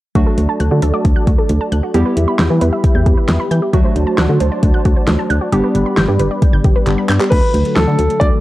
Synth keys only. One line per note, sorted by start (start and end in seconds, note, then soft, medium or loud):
0.15 1.91 F#3 medium
0.15 1.91 A3 medium
0.15 1.91 D4 medium
0.15 1.91 F#4 medium
1.94 3.70 G3 medium
1.94 3.70 B3 medium
1.94 3.70 E4 medium
1.94 3.70 G4 medium
3.73 5.49 F#3 medium
3.73 5.49 A3 medium
3.73 5.49 D4 medium
3.73 5.49 F#4 medium
5.53 6.84 G3 medium
5.53 6.84 B3 medium
5.53 6.84 D4 medium
5.53 6.84 G4 medium
6.87 7.32 G3 medium
6.87 7.32 B3 soft
6.87 7.32 D4 medium
6.87 7.32 G4 medium